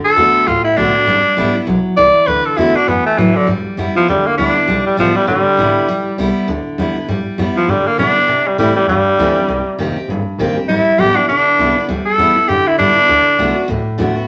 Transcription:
Already playing: D3
0.05 A4
0.16 E2 D3 A3 B3 F#4
0.35 muted upright bass stroke
0.47 D2 A2 F4
0.64 E4
0.76 B1 D3 A3 B3 D4 F#4
0.94 B3 F#4
1.07 G1 G3
1.25 muted upright bass stroke
1.37 A1 G3 B3 E4
1.55 B3 E4
1.67 B1 F#3
1.85 muted upright bass stroke
1.97 C2 E3 D5
2.15 muted upright bass stroke
2.27 D2 D3 B4
2.46 A4, muted upright bass stroke
2.57 E2 D3 A3 B3 E4 F#4
2.76 B3 D4 F#4, muted upright bass stroke
2.88 F#2 E3 B3
3.06 A3
3.18 A2 E3 F#3
3.35 D3
3.47 G2 G3
3.66 muted upright bass stroke
3.77 F#2 G3 B3 E4
3.95 F3 B3 E4, muted upright bass stroke
4.08 E2 D3 G3
4.26 A#3, muted upright bass stroke
4.38 D2 G3 B3 D4 E4
4.55 B3 E4
4.68 B1 G3
4.86 G3, muted upright bass stroke
4.97 A1 F3 G3 B3 E4
5.15 G3 B3 E4, muted upright bass stroke
5.27 G1 D3 G3
5.57 A1 G3 B3 E4
5.76 muted upright bass stroke
5.88 B1 G3
6.07 muted upright bass stroke
6.18 C2 G3 B3 E4
6.48 D2 D3
6.78 E2 G3 B3 E4
6.96 B3 E4, muted upright bass stroke
7.08 G2 G3
7.26 muted upright bass stroke
7.38 F#2 G3 B3 E4
7.55 F3 B3 E4
7.68 G2 D3 G3
7.86 A#3, muted upright bass stroke
7.98 B2 G3 B3 D4 E4
8.16 B3 E4, muted upright bass stroke
8.28 C3
8.46 G3, muted upright bass stroke
8.58 A2 E3 G3 A3 C4 E4
8.76 G3 C4 E4
8.87 E2 G2 G3
9.06 muted upright bass stroke
9.18 D2 E3 A3 C4 E4
9.36 C4 E4
9.48 C2 C3
9.66 muted upright bass stroke
9.78 F1 D#3 A#3 C4 G4
9.96 C4 G4, muted upright bass stroke
10.08 G1 G2
10.26 muted upright bass stroke
10.38 A#1 D#3 A#3 C4 G4
10.56 C4 G4, muted upright bass stroke
10.68 G1 G3 E4
10.98 A1 G3 B3 E4 G4
11.16 B3 D4 E4
11.28 B1 D3 D4
11.59 C2 G3 B3 E4
11.76 B3 E4
11.89 D2 G3
12.05 A4, muted upright bass stroke
12.18 E2 G3 B3 E4
12.36 B3 E4, muted upright bass stroke
12.49 F#2 D3 G4
12.67 E4, muted upright bass stroke
12.78 G2 G3 B3 D4 E4
12.96 B3 E4, muted upright bass stroke
13.09 D2 D3
13.26 muted upright bass stroke
13.38 C2 D3 A3 B3 F#4
13.55 B3 F#4, muted upright bass stroke
13.68 D2 A2
13.98 E2 D3 A3 B3 F#4
14.15 B3 F#4, muted upright bass stroke

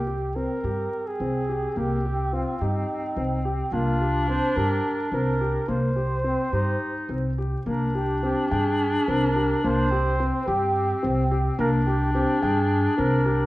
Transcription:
Already playing: C2 C4 G4
0.07 G4
0.36 C4 A#4
0.63 G2 G4
1.07 G#4
1.20 C2 C4
1.49 G4
1.76 C2 A#3 G4
2.06 G4
2.33 C4 F4
2.61 G2 D#4 G4
3.16 C2 C4
3.45 G4
3.72 C2 A#3 D4 F4
4.01 G4
4.28 C4 C5
4.56 G2 G4 A#4
5.12 C2 C4 A#4
5.41 G4
5.68 C2 A#3 C5
5.96 G4
6.24 C4
6.52 G2 D#4 G4
7.09 C2 C4
7.38 G4
7.66 C2 A#3 D4 A#4
7.95 G4
8.23 C4 G4
8.51 G2 G#4 G5
9.08 C2 C4 A#4
9.36 G4
9.64 C2 A#3 C5
9.91 C4 G4
10.20 C4
10.47 G2 G4
11.03 C2 C4
11.31 G4
11.58 C2 A#3 D4 A#4
11.86 G4
12.13 C4 G4
12.40 G2 G#4 G5
12.96 C2 C4 A#4
13.26 G4

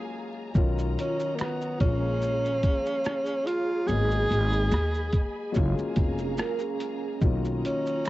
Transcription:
Already playing: F#3 G#3 A#3 C#4 F4 G#4 F5 G#5 A#5
0.55 B1 D#3 F#3 C#4 F4 A#4 C#5 D#5, kick, shaker
0.78 shaker
0.99 C#4, closed hi-hat, shaker
1.20 shaker
1.35 A#3 B3, finger snap, shaker
1.41 cross-stick
1.61 shaker
1.79 A#1 F3 G#3 A#3 C#4 G#4 F5, kick, closed hi-hat, shaker
1.84 F4
2.22 shaker
2.45 shaker
2.63 kick, closed hi-hat, shaker
2.86 shaker
3.04 finger snap, cross-stick, shaker
3.26 shaker
3.46 F4, closed hi-hat, shaker
3.86 G#1 F#3 G#3 A#3 G#4 D#5 G#5 B5, shaker
3.90 B3 D#4
4.11 shaker
4.31 G#1, closed hi-hat, shaker
4.53 shaker
4.71 D#2, finger snap, cross-stick, shaker
4.94 shaker
5.13 kick, closed hi-hat, shaker
5.52 F#3 G#3 A#3, shaker
5.56 F#1 C#4 F4 F5 A#5, kick
5.78 muted upright bass stroke, shaker
5.96 F1, kick, closed hi-hat, shaker
6.18 C#4 G#4, shaker
6.37 F4 A#4, finger snap, cross-stick, shaker
6.59 C#4 G#4, shaker
6.80 closed hi-hat, shaker
7.21 B1 D#3 F#3 A#3 C#4 F4 C#5 D#5 A#5, kick, shaker
7.45 shaker
7.65 C#4, closed hi-hat, shaker
7.86 shaker
8.05 finger snap, shaker

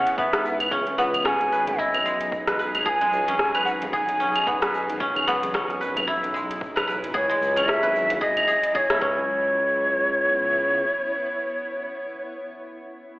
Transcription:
Already playing: G#3 B3 C#4 E4 G#4 B4 F#5
0.07 closed hi-hat, shaker
0.18 B3 E5, kick, muted conga, high conga, shaker
0.33 G#1 B4, cross-stick, closed hi-hat, muted conga, shaker
0.45 shaker
0.60 closed hi-hat, muted conga, claves, shaker
0.71 C#2 F#3 C#4 D#4 G#4, kick, shaker
0.87 closed hi-hat, high conga, low conga, shaker
0.98 C#2 B3 F#5, shaker
1.14 closed hi-hat, high conga, claves, shaker
1.25 C#4 G#5, kick, cross-stick, shaker
1.40 G#1, closed hi-hat, shaker
1.52 B4, shaker
1.67 closed hi-hat, muted conga, low conga, shaker
1.79 E4 D#5, kick, shaker
1.94 B1, closed hi-hat, muted conga, claves, shaker
2.06 G#3, shaker
2.21 closed hi-hat, shaker
2.32 kick, shaker
2.47 B4, cross-stick, closed hi-hat, high conga, shaker
2.59 B4, shaker
2.75 G#1, closed hi-hat, claves, shaker
2.85 C#2 G#4 G#5 A5, kick, shaker
3.01 G#3, closed hi-hat, high conga, low conga, shaker
3.13 C#2, high conga, shaker
3.28 C#4, closed hi-hat, high conga, shaker
3.39 kick, cross-stick, shaker
3.55 G#1 B4, closed hi-hat, claves, shaker
3.65 F#5, shaker
3.82 closed hi-hat, muted conga, low conga, shaker
3.92 G#4 G#5, kick, shaker
4.09 B1, closed hi-hat, shaker
4.20 C#4, shaker
4.36 closed hi-hat, claves, shaker
4.47 B3, kick, muted conga, high conga, shaker
4.62 B4, cross-stick, closed hi-hat, muted conga, shaker
4.75 shaker
4.89 G#1, closed hi-hat, muted conga, shaker
5.00 C#2 C#4 E4, kick, shaker
5.15 closed hi-hat, high conga, low conga, claves, shaker
5.27 C#2 B3, high conga, shaker
5.43 closed hi-hat, high conga, shaker
5.54 C#4, kick, cross-stick, shaker
5.69 G#1, closed hi-hat, shaker
5.81 B4, shaker
5.96 closed hi-hat, muted conga, low conga, claves, shaker
6.07 E4, kick, shaker
6.23 B1, closed hi-hat, muted conga, shaker
6.34 G#3, shaker
6.51 closed hi-hat, shaker
6.61 kick, shaker
6.76 B4, cross-stick, closed hi-hat, high conga, claves, shaker
6.87 B4, shaker
7.03 G#1, closed hi-hat, shaker
7.14 C#2 G#4 C#5, kick, shaker
7.29 G#3, closed hi-hat, high conga, low conga, shaker
7.41 C#2, high conga, shaker
7.56 C#4, closed hi-hat, high conga, claves, shaker
7.68 E5, kick, cross-stick, shaker
7.83 G#1 B4, closed hi-hat, shaker
7.96 shaker
8.10 closed hi-hat, muted conga, low conga, shaker
8.21 G#4 D#5, kick, shaker
8.37 closed hi-hat, claves, shaker
8.48 G#4, shaker
8.63 closed hi-hat, shaker
8.75 G#4 C#5, kick, muted conga, high conga, shaker
8.90 B1 E4, cross-stick, closed hi-hat, muted conga, shaker
9.01 C#2 B3 C#4 E4 C#5, kick
9.18 muted conga

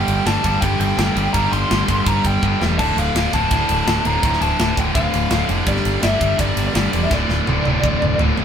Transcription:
Already playing: G2 D3 G3 G5
0.08 G1, ride
0.25 G1 G2 D3 G3 A5, snare, ride
0.44 G1 G2 D3 G3, kick, ride
0.61 G1 G2 D3 G3 G5, kick, ride
0.80 G1 G5, ride
0.97 G1 G2 D3 G3, snare, ride
1.15 G1 G2 D3 G3, ride
1.33 G1 G2 D3 G3 A#5, kick, ride
1.52 G1 C6, ride
1.70 G1 G2 D3 G3, snare, ride
1.87 G1 G2 D3 G3, kick, ride
2.05 G1 G2 D3 G3 A#5, kick, ride
2.25 G1 G5, kick, ride
2.43 G1 G2 D3 G3, kick
2.61 E1 G2 D3 G3, snare
2.79 D1 D2 A2 D3 A5, kick, crash
2.97 D1 F5, ride
3.15 D1 D2 A2 D3, snare, ride
3.33 D1 D2 A2 D3 A5, kick, ride
3.51 D1 D2 A2 D3, kick, ride
3.69 D1, ride
3.86 D1 D2 A2 D3, snare, ride
4.05 D1 D2 A2 D3 A#5, ride
4.23 D1 D2 A2 D3, kick, ride
4.33 snare
4.41 D1 A5, ride
4.59 D1 D2 A2 D3, snare, ride
4.77 D1 D2 A2 D3 G5, kick, ride
4.95 D1 D2 A2 D3 F5, kick, ride
5.13 D1, ride
5.31 D1 D2 A2 D3, snare, ride
5.49 F1 D2 A2 D3, ride
5.66 G1 G2 D3 G3 D5, kick, ride
5.76 snare
5.85 G1, ride
6.02 G1 G2 D3 G3 E5, snare, ride
6.21 G1 G2 D3 G3, kick, ride
6.38 G1 G2 D3 G3 D5, kick, ride
6.57 G1, ride
6.68 D5
6.75 G1 G2 D3 G3, snare, ride
6.93 E1 G2 D3 G3, ride
7.04 E5
7.11 D1 D2 A2 D3 D5, kick, snare
7.29 D1, snare
7.47 D1 D2 A2 D3, high tom
7.65 D1 D2 A2 D3, high tom
7.81 D1 D2 A2 D3, kick, mid tom
8.02 D1, mid tom
8.18 D1 D2 A2 D3, floor tom
8.37 D1 D2 A2 D3, floor tom

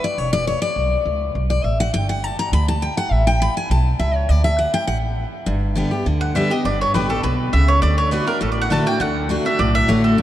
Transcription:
0.04 D5
0.18 E1 C#5
0.33 D5
0.47 C#5
0.62 D5
0.76 B1
1.06 C#2
1.35 B1
1.50 D5
1.64 A1 E5
1.80 F#5
1.93 G1 G5
2.09 F#5
2.24 A5
2.39 A#5
2.52 D2 B5
2.68 A5
2.82 G5
2.97 F#5
3.11 A1 E5
3.27 G5
3.42 B5
3.57 G#5
3.70 B1 A5
3.99 C#2 E5
4.15 C#5
4.29 D2 D5
4.44 E5
4.59 F#5
4.74 G5
4.87 A1 F#5
5.46 G1 G2
5.75 D3 G3 B3 G4
5.91 B3 G4
6.06 D2 D3
6.21 F#5
6.35 D3 G3 B3 G4 E5
6.50 B3 G4 D#5
6.65 G1 G2 D5
6.81 C#5
6.94 A1 D3 G3 B3 G4 B4
7.09 B3 G4 A4
7.23 B1 B2 B4
7.53 C#2 C#3 E5
7.68 C#5
7.82 D2 D3 D5
7.98 C#5
8.11 D3 A3 D4 F#4 B4
8.27 D4 F#4 A#4
8.41 A1 A2 A4
8.52 D5
8.62 F#5
8.70 D3 A3 D4 F#4 A5
8.86 D4 F#4 G5
9.00 D2 D3 F#5
9.29 D3 A3 D4 F#4
9.45 D4 F#4 E5
9.59 B1 A2 D5
9.75 E5
9.88 A1 D3 A3 D4 F#4 C#5
10.04 A4
10.18 G1 G2

